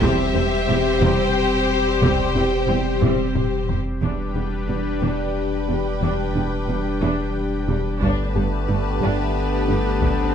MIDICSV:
0, 0, Header, 1, 12, 480
1, 0, Start_track
1, 0, Key_signature, 1, "minor"
1, 0, Tempo, 666667
1, 15, Time_signature, 6, 3, 24, 8
1, 7451, End_track
2, 0, Start_track
2, 0, Title_t, "Violin section"
2, 0, Program_c, 0, 48
2, 10, Note_on_c, 0, 76, 87
2, 718, Note_off_c, 0, 76, 0
2, 732, Note_on_c, 0, 79, 77
2, 1444, Note_off_c, 0, 79, 0
2, 1452, Note_on_c, 0, 79, 70
2, 2159, Note_off_c, 0, 79, 0
2, 2890, Note_on_c, 0, 79, 40
2, 5744, Note_off_c, 0, 79, 0
2, 5774, Note_on_c, 0, 81, 54
2, 7451, Note_off_c, 0, 81, 0
2, 7451, End_track
3, 0, Start_track
3, 0, Title_t, "Violin section"
3, 0, Program_c, 1, 48
3, 8, Note_on_c, 1, 67, 73
3, 9, Note_on_c, 1, 72, 80
3, 2719, Note_off_c, 1, 67, 0
3, 2719, Note_off_c, 1, 72, 0
3, 2893, Note_on_c, 1, 71, 43
3, 5745, Note_off_c, 1, 71, 0
3, 5776, Note_on_c, 1, 71, 60
3, 7451, Note_off_c, 1, 71, 0
3, 7451, End_track
4, 0, Start_track
4, 0, Title_t, "Analog synth pad"
4, 0, Program_c, 2, 89
4, 6, Note_on_c, 2, 60, 75
4, 7, Note_on_c, 2, 72, 78
4, 9, Note_on_c, 2, 55, 75
4, 11, Note_on_c, 2, 67, 76
4, 2862, Note_off_c, 2, 60, 0
4, 2863, Note_off_c, 2, 72, 0
4, 2889, Note_off_c, 2, 67, 0
4, 2891, Note_off_c, 2, 55, 0
4, 2893, Note_on_c, 2, 71, 53
4, 2894, Note_on_c, 2, 62, 54
4, 2897, Note_on_c, 2, 67, 55
4, 2899, Note_on_c, 2, 55, 55
4, 5745, Note_off_c, 2, 71, 0
4, 5746, Note_off_c, 2, 62, 0
4, 5748, Note_off_c, 2, 55, 0
4, 5748, Note_off_c, 2, 67, 0
4, 5770, Note_on_c, 2, 62, 62
4, 5771, Note_on_c, 2, 57, 64
4, 5773, Note_on_c, 2, 67, 62
4, 5773, Note_on_c, 2, 71, 58
4, 7451, Note_off_c, 2, 57, 0
4, 7451, Note_off_c, 2, 62, 0
4, 7451, Note_off_c, 2, 67, 0
4, 7451, Note_off_c, 2, 71, 0
4, 7451, End_track
5, 0, Start_track
5, 0, Title_t, "French horn section"
5, 0, Program_c, 3, 60
5, 8, Note_on_c, 3, 60, 58
5, 9, Note_on_c, 3, 67, 66
5, 2633, Note_off_c, 3, 60, 0
5, 2633, Note_off_c, 3, 67, 0
5, 2900, Note_on_c, 3, 62, 37
5, 2902, Note_on_c, 3, 67, 34
5, 5749, Note_off_c, 3, 62, 0
5, 5750, Note_off_c, 3, 67, 0
5, 5777, Note_on_c, 3, 59, 58
5, 5780, Note_on_c, 3, 69, 53
5, 7451, Note_off_c, 3, 59, 0
5, 7451, Note_off_c, 3, 69, 0
5, 7451, End_track
6, 0, Start_track
6, 0, Title_t, "Viola section"
6, 0, Program_c, 4, 48
6, 7, Note_on_c, 4, 55, 63
6, 8, Note_on_c, 4, 60, 72
6, 234, Note_off_c, 4, 55, 0
6, 235, Note_off_c, 4, 60, 0
6, 250, Note_on_c, 4, 60, 46
6, 252, Note_off_c, 4, 60, 0
6, 252, Note_on_c, 4, 60, 45
6, 310, Note_off_c, 4, 60, 0
6, 487, Note_on_c, 4, 64, 47
6, 488, Note_on_c, 4, 60, 54
6, 544, Note_off_c, 4, 64, 0
6, 546, Note_off_c, 4, 60, 0
6, 727, Note_on_c, 4, 55, 58
6, 728, Note_on_c, 4, 60, 67
6, 954, Note_off_c, 4, 55, 0
6, 955, Note_off_c, 4, 60, 0
6, 1451, Note_on_c, 4, 55, 57
6, 1451, Note_on_c, 4, 60, 55
6, 1676, Note_off_c, 4, 55, 0
6, 1676, Note_off_c, 4, 60, 0
6, 1690, Note_on_c, 4, 60, 35
6, 1748, Note_off_c, 4, 60, 0
6, 1927, Note_on_c, 4, 64, 36
6, 1928, Note_on_c, 4, 60, 45
6, 1984, Note_off_c, 4, 64, 0
6, 1986, Note_off_c, 4, 60, 0
6, 2169, Note_on_c, 4, 60, 51
6, 2171, Note_on_c, 4, 55, 55
6, 2395, Note_off_c, 4, 60, 0
6, 2396, Note_off_c, 4, 55, 0
6, 2889, Note_on_c, 4, 62, 35
6, 3115, Note_off_c, 4, 62, 0
6, 3133, Note_on_c, 4, 59, 31
6, 3190, Note_off_c, 4, 59, 0
6, 3371, Note_on_c, 4, 55, 32
6, 3429, Note_off_c, 4, 55, 0
6, 3613, Note_on_c, 4, 62, 43
6, 3837, Note_off_c, 4, 62, 0
6, 4088, Note_on_c, 4, 55, 37
6, 4146, Note_off_c, 4, 55, 0
6, 4331, Note_on_c, 4, 62, 49
6, 4556, Note_off_c, 4, 62, 0
6, 4568, Note_on_c, 4, 59, 31
6, 4625, Note_off_c, 4, 59, 0
6, 4810, Note_on_c, 4, 55, 36
6, 4867, Note_off_c, 4, 55, 0
6, 5049, Note_on_c, 4, 62, 56
6, 5275, Note_off_c, 4, 62, 0
6, 5530, Note_on_c, 4, 55, 49
6, 5588, Note_off_c, 4, 55, 0
6, 5775, Note_on_c, 4, 62, 67
6, 5998, Note_off_c, 4, 62, 0
6, 6011, Note_on_c, 4, 59, 38
6, 6068, Note_off_c, 4, 59, 0
6, 6255, Note_on_c, 4, 57, 42
6, 6312, Note_off_c, 4, 57, 0
6, 6497, Note_on_c, 4, 62, 61
6, 6719, Note_off_c, 4, 62, 0
6, 6973, Note_on_c, 4, 57, 48
6, 7031, Note_off_c, 4, 57, 0
6, 7212, Note_on_c, 4, 62, 47
6, 7437, Note_off_c, 4, 62, 0
6, 7451, End_track
7, 0, Start_track
7, 0, Title_t, "Synth arpeggio sound"
7, 0, Program_c, 5, 84
7, 12, Note_on_c, 5, 48, 82
7, 157, Note_off_c, 5, 48, 0
7, 254, Note_on_c, 5, 60, 61
7, 398, Note_off_c, 5, 60, 0
7, 494, Note_on_c, 5, 55, 72
7, 639, Note_off_c, 5, 55, 0
7, 735, Note_on_c, 5, 48, 96
7, 879, Note_off_c, 5, 48, 0
7, 1457, Note_on_c, 5, 48, 85
7, 1600, Note_off_c, 5, 48, 0
7, 1697, Note_on_c, 5, 60, 61
7, 1841, Note_off_c, 5, 60, 0
7, 1937, Note_on_c, 5, 55, 64
7, 2080, Note_off_c, 5, 55, 0
7, 2174, Note_on_c, 5, 48, 82
7, 2318, Note_off_c, 5, 48, 0
7, 2896, Note_on_c, 5, 52, 65
7, 3040, Note_off_c, 5, 52, 0
7, 3137, Note_on_c, 5, 62, 51
7, 3280, Note_off_c, 5, 62, 0
7, 3374, Note_on_c, 5, 59, 50
7, 3518, Note_off_c, 5, 59, 0
7, 3617, Note_on_c, 5, 52, 69
7, 3761, Note_off_c, 5, 52, 0
7, 4097, Note_on_c, 5, 59, 51
7, 4241, Note_off_c, 5, 59, 0
7, 4336, Note_on_c, 5, 52, 70
7, 4480, Note_off_c, 5, 52, 0
7, 4574, Note_on_c, 5, 62, 50
7, 4718, Note_off_c, 5, 62, 0
7, 4817, Note_on_c, 5, 59, 51
7, 4961, Note_off_c, 5, 59, 0
7, 5054, Note_on_c, 5, 52, 69
7, 5198, Note_off_c, 5, 52, 0
7, 5534, Note_on_c, 5, 59, 52
7, 5678, Note_off_c, 5, 59, 0
7, 5774, Note_on_c, 5, 55, 70
7, 5919, Note_off_c, 5, 55, 0
7, 6015, Note_on_c, 5, 67, 58
7, 6159, Note_off_c, 5, 67, 0
7, 6253, Note_on_c, 5, 62, 55
7, 6398, Note_off_c, 5, 62, 0
7, 6491, Note_on_c, 5, 55, 77
7, 6636, Note_off_c, 5, 55, 0
7, 6971, Note_on_c, 5, 62, 55
7, 7117, Note_off_c, 5, 62, 0
7, 7211, Note_on_c, 5, 55, 72
7, 7356, Note_off_c, 5, 55, 0
7, 7451, End_track
8, 0, Start_track
8, 0, Title_t, "Cello section"
8, 0, Program_c, 6, 48
8, 10, Note_on_c, 6, 40, 72
8, 68, Note_off_c, 6, 40, 0
8, 251, Note_on_c, 6, 40, 48
8, 308, Note_off_c, 6, 40, 0
8, 492, Note_on_c, 6, 40, 49
8, 550, Note_off_c, 6, 40, 0
8, 734, Note_on_c, 6, 40, 71
8, 792, Note_off_c, 6, 40, 0
8, 1452, Note_on_c, 6, 40, 59
8, 1510, Note_off_c, 6, 40, 0
8, 1694, Note_on_c, 6, 40, 43
8, 1751, Note_off_c, 6, 40, 0
8, 1937, Note_on_c, 6, 40, 37
8, 1994, Note_off_c, 6, 40, 0
8, 2176, Note_on_c, 6, 40, 60
8, 2233, Note_off_c, 6, 40, 0
8, 2895, Note_on_c, 6, 40, 44
8, 2953, Note_off_c, 6, 40, 0
8, 3134, Note_on_c, 6, 40, 30
8, 3191, Note_off_c, 6, 40, 0
8, 3373, Note_on_c, 6, 40, 28
8, 3431, Note_off_c, 6, 40, 0
8, 3614, Note_on_c, 6, 40, 48
8, 3672, Note_off_c, 6, 40, 0
8, 4094, Note_on_c, 6, 40, 37
8, 4152, Note_off_c, 6, 40, 0
8, 4333, Note_on_c, 6, 40, 42
8, 4390, Note_off_c, 6, 40, 0
8, 4572, Note_on_c, 6, 40, 33
8, 4630, Note_off_c, 6, 40, 0
8, 4814, Note_on_c, 6, 40, 32
8, 4872, Note_off_c, 6, 40, 0
8, 5052, Note_on_c, 6, 40, 60
8, 5109, Note_off_c, 6, 40, 0
8, 5532, Note_on_c, 6, 40, 48
8, 5589, Note_off_c, 6, 40, 0
8, 5773, Note_on_c, 6, 43, 60
8, 5831, Note_off_c, 6, 43, 0
8, 6012, Note_on_c, 6, 43, 45
8, 6070, Note_off_c, 6, 43, 0
8, 6251, Note_on_c, 6, 43, 47
8, 6309, Note_off_c, 6, 43, 0
8, 6491, Note_on_c, 6, 43, 63
8, 6548, Note_off_c, 6, 43, 0
8, 6973, Note_on_c, 6, 43, 44
8, 7030, Note_off_c, 6, 43, 0
8, 7210, Note_on_c, 6, 43, 48
8, 7268, Note_off_c, 6, 43, 0
8, 7451, End_track
9, 0, Start_track
9, 0, Title_t, "Double bass section"
9, 0, Program_c, 7, 48
9, 13, Note_on_c, 7, 28, 72
9, 71, Note_off_c, 7, 28, 0
9, 255, Note_on_c, 7, 28, 58
9, 313, Note_off_c, 7, 28, 0
9, 493, Note_on_c, 7, 28, 53
9, 551, Note_off_c, 7, 28, 0
9, 735, Note_on_c, 7, 28, 68
9, 792, Note_off_c, 7, 28, 0
9, 1451, Note_on_c, 7, 28, 60
9, 1508, Note_off_c, 7, 28, 0
9, 1691, Note_on_c, 7, 28, 45
9, 1749, Note_off_c, 7, 28, 0
9, 1931, Note_on_c, 7, 28, 42
9, 1989, Note_off_c, 7, 28, 0
9, 2172, Note_on_c, 7, 28, 50
9, 2229, Note_off_c, 7, 28, 0
9, 2896, Note_on_c, 7, 28, 38
9, 2954, Note_off_c, 7, 28, 0
9, 3135, Note_on_c, 7, 28, 36
9, 3193, Note_off_c, 7, 28, 0
9, 3376, Note_on_c, 7, 28, 30
9, 3433, Note_off_c, 7, 28, 0
9, 3619, Note_on_c, 7, 28, 44
9, 3676, Note_off_c, 7, 28, 0
9, 4096, Note_on_c, 7, 28, 36
9, 4154, Note_off_c, 7, 28, 0
9, 4336, Note_on_c, 7, 28, 46
9, 4393, Note_off_c, 7, 28, 0
9, 4577, Note_on_c, 7, 28, 39
9, 4634, Note_off_c, 7, 28, 0
9, 4816, Note_on_c, 7, 28, 38
9, 4874, Note_off_c, 7, 28, 0
9, 5055, Note_on_c, 7, 28, 50
9, 5112, Note_off_c, 7, 28, 0
9, 5533, Note_on_c, 7, 28, 41
9, 5590, Note_off_c, 7, 28, 0
9, 5776, Note_on_c, 7, 31, 57
9, 5834, Note_off_c, 7, 31, 0
9, 6014, Note_on_c, 7, 31, 53
9, 6072, Note_off_c, 7, 31, 0
9, 6253, Note_on_c, 7, 31, 45
9, 6311, Note_off_c, 7, 31, 0
9, 6492, Note_on_c, 7, 31, 63
9, 6550, Note_off_c, 7, 31, 0
9, 6975, Note_on_c, 7, 31, 41
9, 7033, Note_off_c, 7, 31, 0
9, 7215, Note_on_c, 7, 31, 53
9, 7273, Note_off_c, 7, 31, 0
9, 7451, End_track
10, 0, Start_track
10, 0, Title_t, "Sub bass"
10, 0, Program_c, 8, 38
10, 11, Note_on_c, 8, 28, 65
10, 2887, Note_off_c, 8, 28, 0
10, 2891, Note_on_c, 8, 28, 48
10, 5775, Note_on_c, 8, 31, 60
10, 5786, Note_off_c, 8, 28, 0
10, 7451, Note_off_c, 8, 31, 0
10, 7451, End_track
11, 0, Start_track
11, 0, Title_t, "Swell"
11, 0, Program_c, 10, 103
11, 7213, Note_on_c, 10, 60, 39
11, 7451, Note_off_c, 10, 60, 0
11, 7451, End_track
12, 0, Start_track
12, 0, Title_t, "Taiko and cinematic ensemble drums"
12, 13, Note_on_c, 9, 41, 91
12, 85, Note_off_c, 9, 41, 0
12, 1455, Note_on_c, 9, 41, 89
12, 1527, Note_off_c, 9, 41, 0
12, 2177, Note_on_c, 9, 45, 70
12, 2249, Note_off_c, 9, 45, 0
12, 2415, Note_on_c, 9, 45, 77
12, 2487, Note_off_c, 9, 45, 0
12, 2655, Note_on_c, 9, 43, 82
12, 2727, Note_off_c, 9, 43, 0
12, 2896, Note_on_c, 9, 41, 42
12, 2968, Note_off_c, 9, 41, 0
12, 5777, Note_on_c, 9, 41, 55
12, 5849, Note_off_c, 9, 41, 0
12, 7215, Note_on_c, 9, 41, 70
12, 7287, Note_off_c, 9, 41, 0
12, 7451, End_track
0, 0, End_of_file